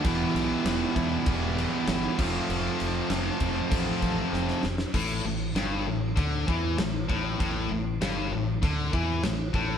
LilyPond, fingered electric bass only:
\new Staff \with { instrumentName = "Fingered electric bass" } { \clef bass \time 4/4 \key a \minor \tempo 4 = 98 e,,8 b,,8 e,,8 e,8 e,,4 g,,8 f,,8 | f,,8 f,,8 f,,8 f,,8 a,,8 a,,8 f,,8 f,,8 | a,,8 a,,8 g,,8 a,,8 d,8 e,8 a,,8 a,,8 | a,,8 a,,8 g,,8 a,,8 d,8 e,8 a,,8 a,,8 | }